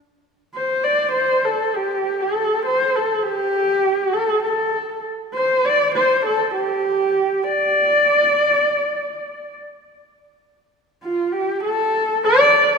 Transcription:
0.55 0.85 C5 medium
0.84 1.12 D5 loud
1.12 1.46 C5 loud
1.45 1.77 A4 medium
1.75 2.22 G4 medium
2.21 2.65 A4 medium
2.66 2.97 C5 medium
2.96 3.25 A4 medium
3.23 4.14 G4 loud
4.13 4.43 A4 medium
4.44 5.00 A4 medium
5.34 5.67 C5 loud
5.65 5.95 D5 loud
5.95 6.22 C5 loud
6.26 6.53 A4 loud
6.55 7.46 G4 medium
7.44 9.54 D5 loud
11.03 11.34 F4 medium
11.32 11.63 G4 medium
11.64 12.19 A4 loud
12.25 12.78 D5 loud

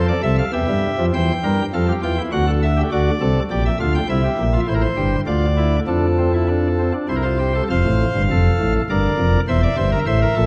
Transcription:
0.00 0.12 F2 medium
0.00 0.12 F3 medium
0.00 0.44 A4 medium
0.08 0.21 D5 medium
0.23 0.41 C2 medium
0.23 0.41 C3 medium
0.23 0.36 E5 medium
0.38 0.51 F5 medium
0.53 0.66 E2 medium
0.53 0.66 E3 medium
0.53 1.05 G4 medium
0.53 1.05 E5 medium
0.68 0.87 G2 medium
0.68 0.87 G3 medium
0.99 1.11 F2 medium
0.99 1.11 F3 medium
1.13 1.32 E2 medium
1.13 1.32 E3 medium
1.13 1.32 C5 medium
1.13 1.65 G5 medium
1.43 1.62 G2 medium
1.43 1.62 G3 medium
1.43 1.62 A#4 medium
1.73 1.92 F2 medium
1.73 1.92 F3 medium
1.73 1.86 A4 medium
1.73 1.92 F5 medium
1.88 2.01 G4 medium
2.03 2.21 E2 medium
2.03 2.21 E3 medium
2.03 2.15 F4 medium
2.03 2.21 G5 medium
2.18 2.30 E4 medium
2.32 2.83 D2 medium
2.32 2.83 D3 medium
2.32 2.45 F#4 medium
2.32 2.50 F#5 medium
2.47 2.65 A4 medium
2.62 2.80 E5 medium
2.77 2.89 G4 medium
2.92 3.10 D2 medium
2.92 3.10 D3 medium
2.92 3.10 F#4 medium
2.92 3.42 D5 medium
3.21 3.39 C2 medium
3.21 3.39 C3 medium
3.21 3.39 A4 medium
3.50 3.69 A#1 medium
3.50 3.69 A#2 medium
3.50 3.69 G4 medium
3.50 3.63 D5 medium
3.65 3.78 E5 medium
3.80 3.98 D2 medium
3.80 3.98 D3 medium
3.80 3.98 F4 medium
3.80 3.92 F5 medium
3.95 4.07 G5 medium
4.09 4.27 C2 medium
4.09 4.27 C3 medium
4.09 4.22 E4 medium
4.09 4.60 E5 medium
4.24 4.42 G4 medium
4.39 4.57 A#1 medium
4.39 4.57 A#2 medium
4.53 4.66 F4 medium
4.68 4.86 A1 medium
4.68 4.86 A2 medium
4.68 4.86 E4 medium
4.68 4.74 C5 medium
4.74 4.81 A#4 medium
4.81 5.20 C5 medium
4.97 5.15 G1 medium
4.97 5.15 G2 medium
4.97 5.15 G4 medium
5.27 5.79 D2 medium
5.27 5.79 D3 medium
5.27 5.46 F4 medium
5.27 5.79 D5 medium
5.57 5.76 E4 medium
5.87 6.92 F2 medium
5.87 6.92 F3 medium
5.87 6.06 D4 medium
5.87 6.92 A4 medium
6.18 6.31 C4 medium
6.34 6.47 E4 medium
6.49 6.67 D4 medium
6.79 6.92 C4 medium
6.94 7.07 D4 medium
7.09 7.61 C2 medium
7.09 7.61 C3 medium
7.09 7.22 E4 medium
7.09 7.15 C5 medium
7.16 7.23 A#4 soft
7.22 7.37 F4 medium
7.22 7.63 C5 medium
7.39 7.53 G4 medium
7.55 7.68 A4 medium
7.70 7.83 F1 medium
7.70 7.83 F2 medium
7.70 8.22 C5 medium
7.70 8.73 F5 medium
7.85 8.04 A1 medium
7.85 8.04 A2 medium
8.15 8.28 G1 medium
8.15 8.28 G2 medium
8.30 8.49 F1 medium
8.30 8.49 F2 medium
8.30 8.81 A4 medium
8.60 8.78 A1 medium
8.60 8.78 A2 medium
8.90 9.08 G1 medium
8.90 9.08 G2 medium
8.90 9.40 A#4 medium
8.90 9.40 D5 medium
9.19 9.37 F1 medium
9.19 9.37 F2 medium
9.48 9.66 E1 medium
9.48 9.66 E2 medium
9.48 9.61 C5 medium
9.48 9.99 E5 medium
9.63 9.75 D5 medium
9.77 9.96 G1 medium
9.77 9.95 G2 medium
9.77 9.90 C5 medium
9.92 10.05 A#4 medium
10.06 10.25 A1 medium
10.06 10.25 A2 medium
10.06 10.19 C5 medium
10.06 10.46 E5 medium
10.22 10.34 A#4 medium
10.36 10.46 A#1 medium
10.36 10.46 A#2 medium
10.36 10.46 A4 medium

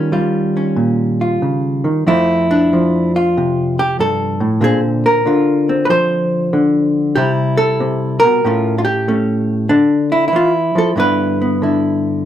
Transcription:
0.00 1.83 D#3 medium
0.00 0.11 G3 soft
0.00 0.55 C#4 soft
0.00 0.12 F4 medium
0.12 2.06 G3 medium
0.12 1.21 F4 soft
0.57 2.05 C#4 soft
0.76 1.41 A#2 medium
1.21 2.07 F4 soft
1.42 1.85 C#3 soft
1.84 2.06 D#3 medium
2.07 3.98 F2 medium
2.07 2.73 F3 soft
2.07 4.61 A3 soft
2.07 2.50 C4 soft
2.07 3.15 E4 medium
2.51 3.79 D4 medium
2.73 4.61 F3 medium
3.16 3.79 F4 medium
3.37 4.40 C3 medium
3.79 4.00 G4 medium
3.99 4.42 G2 medium
3.99 4.64 A4 medium
4.40 4.62 A2 medium
4.61 5.26 A#2 medium
4.61 5.24 D3 soft
4.61 5.69 C4 soft
4.61 4.80 G#4 medium
5.06 5.85 A#4 medium
5.25 6.52 D3 medium
5.25 7.15 F4 soft
5.69 7.17 C4 soft
5.85 5.90 B4 medium
5.90 7.14 F3 medium
5.90 7.17 C5 loud
6.53 7.17 D3 medium
7.16 7.79 C3 medium
7.16 8.43 G3 soft
7.16 8.19 E4 soft
7.16 7.32 G4 medium
7.57 8.42 A4 loud
7.80 8.23 C3 medium
8.20 8.75 A#4 loud
8.24 8.44 B2 medium
8.44 9.70 A2 medium
8.44 9.07 A3 soft
8.44 9.07 C#4 soft
8.44 8.77 F4 soft
8.78 8.84 F4 medium
8.85 9.69 G4 medium
9.08 9.68 A3 medium
9.08 9.68 C#4 soft
9.69 10.32 D3 medium
9.69 10.33 D4 medium
10.12 10.27 E4 medium
10.28 10.97 E4 medium
10.33 10.75 E3 medium
10.33 10.52 F4 medium
10.75 10.97 F3 medium
10.75 10.90 A4 medium
10.96 12.25 G2 medium
10.96 11.61 D3 soft
10.96 11.40 B3 soft
10.96 11.62 E4 soft
10.96 12.25 B4 medium
11.42 12.25 B3 soft
11.62 12.25 D3 medium
11.62 12.25 E4 soft

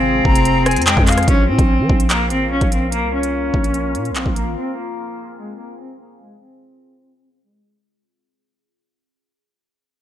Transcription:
0.00 0.21 G#1 loud
0.00 1.22 C3 medium
0.00 1.23 F3 medium
0.00 1.24 G#3 medium
0.00 0.83 C4 medium
0.00 1.24 F4 medium
0.00 1.26 F4 medium
0.00 1.24 G#4 medium
0.00 1.24 C5 medium
0.00 1.24 G#5 medium
0.25 0.78 F1 loud
0.25 0.63 A#5 medium
0.25 kick medium
0.35 closed hi-hat medium
0.45 closed hi-hat medium
0.66 0.86 G#5 medium
0.66 cross-stick medium
0.66 closed hi-hat medium
0.71 closed hi-hat medium
0.76 0.96 F2 medium
0.76 closed hi-hat medium
0.82 closed hi-hat medium
0.87 1.25 G#3 medium
0.87 1.06 G5 medium
0.87 clap loud
0.87 closed hi-hat medium
0.97 1.27 F2 loud
0.97 kick loud
1.07 1.27 F5 medium
1.07 clap medium
1.07 closed hi-hat medium
1.07 open hi-hat medium
1.12 closed hi-hat medium
1.18 cross-stick medium
1.18 closed hi-hat medium
1.23 closed hi-hat soft
1.28 1.50 A#1 loud
1.28 4.53 A#3 medium
1.28 1.46 C#4 medium
1.28 7.81 F4 medium
1.28 4.53 A#4 medium
1.28 7.81 F5 medium
1.28 kick loud
1.28 closed hi-hat medium
1.48 1.58 A#2 loud
1.48 2.07 C4 medium
1.59 1.81 A#1 loud
1.59 kick medium
1.59 closed hi-hat medium
1.79 1.89 F3 medium
1.89 2.32 A#1 loud
1.89 kick medium
2.00 closed hi-hat medium
2.10 2.28 A#3 medium
2.10 clap loud
2.10 closed hi-hat medium
2.30 2.47 G#1 loud
2.30 2.49 C4 medium
2.30 closed hi-hat medium
2.46 2.61 A#1 medium
2.51 2.69 C#4 medium
2.61 3.04 A#1 loud
2.61 kick medium
2.61 closed hi-hat medium
2.72 2.90 C4 medium
2.72 closed hi-hat medium
2.92 3.11 A#3 medium
2.92 closed hi-hat medium
3.02 3.51 C2 loud
3.13 4.12 C#4 medium
3.23 closed hi-hat medium
3.54 3.96 A#1 loud
3.54 kick medium
3.64 closed hi-hat medium
3.74 closed hi-hat medium
3.95 4.12 A#2 loud
3.95 closed hi-hat medium
4.05 closed hi-hat soft
4.10 4.25 A#1 loud
4.15 4.33 C4 medium
4.15 clap loud
4.15 closed hi-hat medium
4.26 4.48 A#1 loud
4.26 kick medium
4.36 4.54 A#3 medium
4.36 closed hi-hat medium
4.46 4.56 G#1 loud
4.57 7.82 C4 medium
4.57 4.75 C4 loud
4.57 7.82 G#4 medium
4.77 5.35 A#3 medium
5.39 5.57 G#3 medium
5.59 5.77 A#3 medium
5.80 5.98 C4 medium
6.00 6.18 A#3 medium
6.21 6.39 G#3 medium
6.42 7.40 C4 medium
7.44 7.83 G#3 medium

